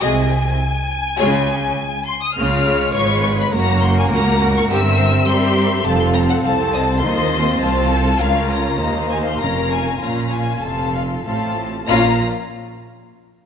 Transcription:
0.01 0.51 C2 medium
0.01 0.51 C3 medium
0.01 0.29 G#3 medium
0.01 0.29 F#4 medium
0.01 0.29 G#4 medium
0.01 0.29 D#5 medium
0.01 2.03 G#5 loud
1.18 1.69 C#2 loud
1.18 1.69 C#3 medium
1.18 1.47 G#3 medium
1.18 1.47 F4 medium
1.18 1.47 G#4 medium
1.18 1.46 C#5 medium
2.07 2.22 C6 loud
2.24 2.38 D#6 loud
2.37 2.91 C#2 medium
2.37 2.91 C#3 loud
2.37 2.46 A#3 medium
2.37 2.92 F4 medium
2.37 2.91 G#4 medium
2.37 3.50 C#5 loud
2.37 2.94 F6 loud
2.65 3.51 G#3 medium
2.94 3.52 G#1 loud
2.94 3.52 G#2 medium
2.94 3.51 F4 medium
2.94 3.51 B4 medium
2.94 3.38 C#6 loud
3.41 3.54 B5 loud
3.53 4.10 F#1 medium
3.53 4.10 F#2 loud
3.53 4.69 A#3 loud
3.53 4.10 F#4 loud
3.53 5.28 A#4 loud
3.53 4.10 C#5 medium
3.53 3.83 A#5 loud
3.84 3.98 C6 loud
3.99 4.04 G#5 loud
4.10 4.69 C#2 medium
4.10 4.69 C#2 loud
4.10 4.68 F#4 medium
4.10 4.69 F#5 medium
4.10 4.55 A#5 loud
4.57 4.63 C#6 loud
4.68 5.26 G1 loud
4.68 5.27 G2 loud
4.68 5.83 C4 loud
4.68 4.78 G4 loud
4.68 5.28 E5 medium
4.72 5.28 E6 loud
4.97 5.05 C5 medium
5.27 5.84 G2 medium
5.27 5.85 G3 loud
5.27 5.86 G4 medium
5.27 5.85 A#4 medium
5.27 5.86 E5 medium
5.27 5.87 C6 loud
5.84 6.43 F1 loud
5.84 6.43 F2 loud
5.84 7.00 C4 medium
5.84 6.43 A4 medium
5.84 6.42 F5 medium
5.84 6.00 A5 loud
6.01 6.06 C6 loud
6.13 6.19 A#5 loud
6.30 6.35 F#5 loud
6.44 7.02 C2 loud
6.44 7.02 C2 medium
6.44 7.02 A4 medium
6.44 7.02 C5 medium
6.44 6.52 F5 medium
6.44 7.01 A5 loud
6.73 6.81 D#5 medium
7.02 7.61 D#2 loud
7.02 7.62 D#2 loud
7.02 7.32 D#4 medium
7.02 8.20 F4 medium
7.02 7.61 C5 loud
7.02 7.61 D#5 medium
7.02 7.61 C6 loud
7.32 8.21 C4 medium
7.61 8.19 C2 medium
7.61 8.20 C2 loud
7.61 7.91 C5 medium
7.61 8.79 F5 medium
7.61 8.20 A5 loud
7.91 8.21 A4 medium
8.20 8.79 C#2 medium
8.20 8.79 C#2 loud
8.20 8.80 C#4 medium
8.20 8.79 F4 medium
8.20 8.81 A#4 medium
8.20 8.51 F5 loud
8.51 9.10 A#5 loud
8.80 9.41 D#2 medium
8.80 9.41 A#3 medium
8.80 9.40 D#4 medium
8.80 9.41 C5 medium
8.80 9.99 F5 medium
9.11 9.17 G#5 loud
9.28 9.42 C6 loud
9.41 10.02 F1 medium
9.41 10.03 F2 medium
9.41 10.01 C#4 medium
9.41 10.01 A#4 medium
9.41 9.72 A#5 loud
9.73 10.03 G#5 loud
10.01 10.62 A#1 medium
10.01 10.62 A#2 medium
10.01 10.62 C#4 medium
10.01 10.61 F4 medium
10.01 10.61 F5 medium
10.01 10.33 A#5 medium
10.33 10.63 G#5 loud
10.62 11.23 F1 medium
10.62 11.23 F2 medium
10.62 11.23 F4 medium
10.62 11.24 A4 medium
10.62 11.24 F5 medium
10.62 10.93 A5 loud
10.95 11.03 F5 medium
11.24 11.87 A1 medium
11.24 11.87 A2 medium
11.24 11.67 C4 medium
11.24 11.67 F4 medium
11.24 11.67 A4 medium
11.24 11.67 F5 medium
11.24 11.87 A5 medium
11.87 12.23 A#1 loud
11.87 12.23 A#2 loud
11.87 12.23 C#4 medium
11.87 12.23 F4 medium
11.87 12.24 F4 medium
11.87 12.24 F5 loud
11.87 12.23 A#5 loud

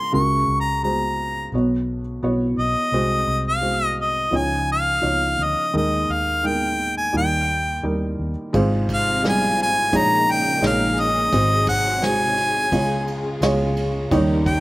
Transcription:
0.00 0.13 C#2 soft
0.00 0.12 C#3 soft
0.00 0.12 G#3 medium
0.00 0.15 F4 medium
0.00 0.13 A#4 medium
0.00 0.15 C#5 medium
0.00 0.14 C6 medium
0.12 1.49 C#2 soft
0.12 0.45 C#2 medium
0.12 1.49 C#3 soft
0.12 0.60 G#3 medium
0.12 0.61 F#4 medium
0.12 0.61 A#4 medium
0.12 0.57 C#6 medium
0.48 1.49 C#2 medium
0.60 0.82 A#5 medium
0.83 1.31 G#3 medium
0.83 1.31 F#4 soft
0.83 1.32 C5 medium
0.83 1.50 A#5 medium
1.52 2.19 B1 medium
1.52 2.90 B1 soft
1.52 2.90 B2 soft
1.52 2.01 B3 soft
1.52 2.02 F#4 medium
1.52 2.02 C#5 medium
2.23 2.55 B1 medium
2.23 2.71 B3 medium
2.23 2.71 F#4 medium
2.23 2.71 C#5 medium
2.57 2.74 B1 medium
2.57 3.42 D#5 medium
2.92 3.24 C2 medium
2.92 4.30 C2 soft
2.92 4.29 C3 soft
2.92 3.41 G#3 medium
2.92 3.41 F#4 medium
2.92 3.41 C5 medium
3.27 4.29 C2 medium
3.48 3.96 F5 medium
3.61 4.10 G#3 soft
3.61 4.11 F#4 soft
3.61 4.11 C5 medium
4.01 4.38 D#5 medium
4.31 4.98 C#2 medium
4.31 5.69 C#2 soft
4.31 5.69 C#3 soft
4.31 4.80 F3 medium
4.31 4.80 D#4 soft
4.31 4.81 C#5 medium
4.37 4.70 G#5 medium
4.72 5.45 F5 medium
5.02 5.35 C#2 medium
5.02 5.50 F3 medium
5.02 5.50 D#4 medium
5.02 5.51 C#5 medium
5.38 5.54 D2 medium
5.43 5.76 D#5 medium
5.74 7.09 D#2 soft
5.74 6.05 D#2 medium
5.74 7.09 D#3 medium
5.74 6.21 G#3 medium
5.74 6.21 D#4 medium
5.74 6.21 A#4 medium
5.74 6.14 D#5 medium
6.09 7.09 D#2 medium
6.09 6.48 F5 medium
6.43 6.91 G#3 soft
6.43 6.91 D#4 soft
6.43 6.92 A#4 medium
6.43 6.97 G5 medium
6.98 7.13 G#5 medium
7.13 7.79 D#2 medium
7.13 8.49 D#2 soft
7.13 8.49 D#3 soft
7.13 7.60 G3 medium
7.13 7.61 D#4 soft
7.13 7.61 A#4 medium
7.17 7.81 G5 medium
7.83 8.15 D#2 medium
7.83 8.31 G3 medium
7.83 8.31 D#4 medium
7.83 8.31 A#4 medium
8.19 8.34 D#2 medium
8.53 9.93 G#1 medium
8.53 9.89 G#1 medium
8.53 9.89 G#2 medium
8.53 9.92 C3 medium
8.53 9.92 F3 medium
8.53 9.00 G#3 medium
8.53 12.68 D#4 medium
8.53 9.01 F4 medium
8.53 9.92 F4 medium
8.53 9.01 C5 medium
8.53 kick medium
8.53 ride medium
8.89 kick medium
8.89 ride medium
8.93 9.23 F5 medium
9.22 9.71 G3 medium
9.22 9.70 G#3 medium
9.22 9.70 F4 medium
9.22 snare medium
9.22 ride medium
9.29 9.58 G#5 medium
9.58 ride medium
9.63 9.98 G#5 medium
9.92 11.28 A#1 medium
9.92 10.58 A#1 medium
9.92 11.28 A#2 medium
9.92 11.30 C#3 medium
9.92 10.40 G#3 medium
9.92 11.30 A#3 medium
9.92 10.40 D#4 medium
9.92 14.07 G#4 medium
9.92 10.40 C#5 medium
9.92 kick medium
9.92 ride medium
9.96 10.33 A#5 loud
10.28 10.64 G5 medium
10.28 ride soft
10.61 11.28 A#1 medium
10.61 11.09 G#3 medium
10.61 11.10 D#4 medium
10.61 11.10 C#5 medium
10.61 snare medium
10.61 ride medium
10.66 11.01 F5 medium
10.97 11.68 D#5 medium
10.97 ride medium
11.32 12.72 G#1 medium
11.32 12.68 G#1 medium
11.32 12.68 G#2 medium
11.32 12.70 C3 medium
11.32 12.70 F#3 medium
11.32 11.80 G#3 medium
11.32 11.80 F#4 medium
11.32 11.80 C5 medium
11.32 kick medium
11.32 ride medium
11.67 12.06 F#5 medium
11.67 kick medium
11.67 ride medium
12.02 12.49 G#3 medium
12.02 12.49 F#4 medium
12.02 12.50 C5 medium
12.02 13.07 G#5 medium
12.02 snare medium
12.02 ride medium
12.37 ride soft
12.72 13.37 C#2 loud
12.72 14.07 C#2 medium
12.72 14.07 C#3 medium
12.72 14.60 C#3 medium
12.72 13.19 G#3 medium
12.72 14.10 G#3 medium
12.72 13.19 F4 medium
12.72 14.10 F4 medium
12.72 13.20 C#5 medium
12.72 kick medium
12.72 ride medium
13.08 ride soft
13.41 14.06 C#2 medium
13.41 13.89 G#3 medium
13.41 13.89 F4 medium
13.41 13.89 C#5 loud
13.41 snare medium
13.41 ride medium
13.77 ride medium
14.11 14.60 D#2 medium
14.11 14.60 D#3 medium
14.11 14.58 G3 medium
14.11 14.60 G3 medium
14.11 14.60 D#4 medium
14.11 14.59 D#4 medium
14.11 14.60 A#4 medium
14.11 14.59 C#5 medium
14.11 kick medium
14.11 ride medium
14.46 14.60 G5 medium
14.46 kick medium
14.46 ride medium

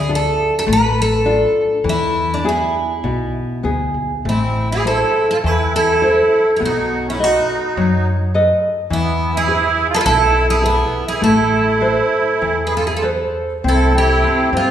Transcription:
0.00 0.27 D2 medium
0.00 0.10 G#4 medium
0.09 0.55 D4 soft
0.09 0.56 F4 soft
0.09 0.56 A4 medium
0.15 0.53 A4 medium
0.59 0.64 A4 medium
0.66 1.44 A1 medium
0.66 1.24 A3 medium
0.73 0.99 B4 loud
1.02 1.89 A4 loud
1.25 1.73 D4 medium
1.25 1.73 F4 soft
1.25 1.73 A4 medium
1.84 2.62 E2 medium
1.84 2.42 E3 medium
1.89 2.33 E4 medium
2.34 2.47 D4 medium
2.44 2.92 B3 soft
2.44 2.92 E4 soft
2.44 2.92 G#4 medium
2.49 3.32 E4 medium
3.04 3.43 B1 medium
3.04 3.62 B2 soft
3.63 3.92 D2 medium
3.63 4.12 B3 soft
3.63 4.13 E4 soft
3.63 4.13 G#4 soft
3.94 4.22 B1 medium
4.25 5.03 A1 medium
4.25 4.84 A3 soft
4.25 4.68 C4 medium
4.25 4.69 E4 medium
4.72 4.85 E4 medium
4.72 4.87 G#4 medium
4.85 5.32 E4 soft
4.85 5.28 E4 medium
4.85 5.33 A4 soft
4.85 5.30 A4 medium
4.85 5.33 C5 soft
5.31 5.38 F4 medium
5.31 5.36 A4 medium
5.44 6.20 E2 medium
5.44 6.01 E3 medium
5.44 5.75 E4 medium
5.44 5.75 B4 medium
5.76 6.52 E4 medium
5.76 6.56 A4 medium
6.02 6.49 E4 soft
6.02 6.49 A4 soft
6.02 6.49 C5 soft
6.54 6.60 E4 soft
6.54 6.62 G#4 medium
6.60 7.37 B1 medium
6.60 7.17 B3 medium
6.60 7.03 D#4 medium
6.66 7.08 F#4 medium
7.06 7.19 C#4 medium
7.06 7.24 E4 medium
7.19 8.07 D#4 medium
7.19 7.66 A4 soft
7.19 7.66 B4 soft
7.19 7.66 D#5 soft
7.24 8.08 F#4 medium
7.77 8.51 F#2 medium
7.77 8.33 F#3 medium
8.34 8.80 A4 soft
8.34 8.80 B4 soft
8.34 8.80 D#5 medium
8.90 9.66 E2 medium
8.90 9.46 E3 medium
8.90 9.31 B3 medium
8.90 9.37 E4 medium
9.34 9.87 E4 medium
9.34 9.95 G#4 medium
9.47 9.94 E4 soft
9.47 9.94 G#4 soft
9.47 9.94 B4 medium
9.90 9.94 F4 medium
9.90 9.97 G#4 medium
9.94 10.05 F4 medium
9.94 9.97 A4 medium
9.94 9.99 B4 medium
10.01 10.05 A4 medium
10.05 10.82 B1 loud
10.05 10.62 B2 medium
10.05 10.47 E4 medium
10.05 10.46 A4 loud
10.48 10.62 E4 medium
10.48 10.65 G#4 medium
10.62 11.04 B3 medium
10.62 11.10 E4 soft
10.62 11.06 E4 medium
10.62 11.10 G#4 soft
10.62 11.10 B4 medium
11.07 11.21 E4 medium
11.07 11.23 G#4 medium
11.21 12.00 A1 medium
11.21 11.80 A3 medium
11.21 12.62 E4 medium
11.21 12.63 A4 medium
11.81 12.30 A4 soft
11.81 12.30 B4 soft
11.81 12.30 C5 soft
12.42 13.22 E2 medium
12.42 13.02 E3 soft
12.65 12.74 G#4 soft
12.65 12.76 B4 medium
12.76 12.84 F4 medium
12.76 12.86 A4 medium
12.85 12.94 E4 medium
12.85 12.95 G#4 medium
12.96 13.04 F4 medium
12.96 13.05 A4 medium
13.02 13.52 A4 soft
13.02 13.52 B4 soft
13.02 13.52 C5 soft
13.64 14.22 C2 medium
13.64 13.94 C4 medium
13.64 13.93 E4 medium
13.68 13.97 A4 medium
13.95 14.23 C4 medium
13.95 14.50 E4 medium
13.95 14.57 G4 medium
14.24 14.52 C4 soft
14.53 14.71 G2 medium
14.53 14.71 C4 soft
14.53 14.71 C4 medium
14.57 14.71 F4 medium

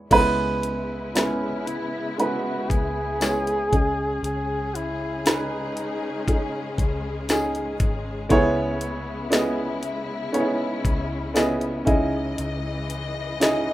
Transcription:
0.00 0.12 E2 medium
0.00 0.12 E3 medium
0.00 0.11 G#3 medium
0.00 0.11 B3 medium
0.00 0.12 E4 medium
0.00 0.12 B4 medium
0.00 0.12 C#5 medium
0.10 2.65 C#2 medium
0.10 3.68 C#3 medium
0.10 1.63 C#3 medium
0.10 1.09 G#3 loud
0.10 3.69 G#3 medium
0.10 3.69 B3 medium
0.10 1.10 B3 loud
0.10 1.10 C#4 loud
0.10 3.69 E4 medium
0.10 1.10 E4 medium
0.10 1.10 B4 loud
0.10 kick loud
0.10 closed hi-hat medium
0.10 crash medium
0.63 closed hi-hat medium
1.14 2.13 G#3 medium
1.14 2.13 B3 medium
1.14 1.68 C#4 medium
1.14 2.13 C#4 medium
1.14 2.13 E4 medium
1.14 2.14 B4 medium
1.14 snare loud
1.14 closed hi-hat medium
1.14 tambourine medium
1.67 2.21 E4 medium
1.67 closed hi-hat medium
2.18 3.15 G#3 medium
2.18 3.16 B3 medium
2.18 3.16 C#4 medium
2.18 3.16 E4 medium
2.18 2.72 F#4 medium
2.18 3.17 B4 medium
2.18 closed hi-hat medium
2.70 3.68 C#2 medium
2.70 4.23 G#4 loud
2.70 kick medium
2.70 closed hi-hat medium
3.20 3.72 G#3 medium
3.20 3.72 B3 medium
3.20 3.70 C#4 medium
3.20 3.72 E4 medium
3.20 3.73 C#5 medium
3.20 snare loud
3.20 closed hi-hat medium
3.20 tambourine medium
3.47 closed hi-hat soft
3.71 4.20 C#2 medium
3.71 8.26 C#3 medium
3.71 5.21 C#3 medium
3.71 13.73 G#3 medium
3.71 8.26 C#4 medium
3.71 5.17 C#4 medium
3.71 8.26 G#4 medium
3.71 5.18 G#4 medium
3.71 5.18 D#5 medium
3.71 kick loud
3.71 closed hi-hat medium
4.23 6.48 C#2 loud
4.23 4.78 G#4 loud
4.23 closed hi-hat medium
4.75 5.30 E4 medium
4.75 closed hi-hat medium
5.25 6.22 C#4 medium
5.25 6.23 D#4 medium
5.25 6.80 D#4 medium
5.25 6.23 B4 medium
5.25 snare loud
5.25 closed hi-hat medium
5.25 tambourine medium
5.77 closed hi-hat medium
6.26 7.24 C#4 medium
6.26 7.24 D#4 medium
6.26 7.25 G#4 medium
6.26 kick medium
6.26 closed hi-hat medium
6.78 7.76 C#2 medium
6.78 kick medium
6.78 closed hi-hat medium
7.29 8.25 C#4 medium
7.29 8.26 D#4 medium
7.29 8.26 G#4 loud
7.29 snare loud
7.29 closed hi-hat loud
7.29 tambourine medium
7.55 closed hi-hat soft
7.80 8.27 G#1 medium
7.80 kick loud
7.80 closed hi-hat medium
8.29 10.81 C#2 loud
8.29 9.79 C#3 medium
8.29 13.73 C#3 medium
8.29 9.26 B3 loud
8.29 10.33 B3 medium
8.29 9.27 C#4 loud
8.29 9.27 E4 loud
8.29 11.84 E4 medium
8.29 9.27 G#4 loud
8.29 9.27 C#5 loud
8.29 kick loud
8.29 closed hi-hat medium
8.81 closed hi-hat medium
9.30 10.28 B3 medium
9.30 10.28 C#4 medium
9.30 10.29 E4 medium
9.30 10.29 G#4 medium
9.30 10.29 D#5 loud
9.30 snare loud
9.30 closed hi-hat medium
9.30 tambourine medium
9.83 closed hi-hat medium
10.33 11.30 B3 medium
10.33 11.30 C#4 medium
10.33 11.86 C#4 medium
10.33 10.40 D#4 medium
10.33 11.31 G#4 medium
10.33 11.31 C#5 loud
10.33 closed hi-hat medium
10.40 11.34 E4 medium
10.85 11.83 C#2 loud
10.85 kick medium
10.85 closed hi-hat medium
11.34 11.86 B3 medium
11.34 11.83 C#4 medium
11.34 11.85 E4 medium
11.34 11.85 G#4 medium
11.34 11.85 D#5 loud
11.34 snare loud
11.34 closed hi-hat loud
11.34 tambourine medium
11.61 closed hi-hat soft
11.85 12.35 C#2 medium
11.85 13.37 C#3 medium
11.85 13.73 E3 medium
11.85 13.33 C#4 loud
11.85 13.33 D#4 medium
11.85 13.33 E4 medium
11.85 13.33 G#4 medium
11.85 13.34 D#5 loud
11.85 13.73 D#5 medium
11.85 kick loud
11.85 closed hi-hat medium
12.38 13.73 C#2 loud
12.38 closed hi-hat medium
12.90 closed hi-hat medium
13.40 13.73 C#4 medium
13.40 13.73 D#4 medium
13.40 13.73 E4 medium
13.40 13.73 G#4 medium
13.40 13.73 D#5 loud
13.40 snare loud
13.40 closed hi-hat loud
13.40 tambourine medium

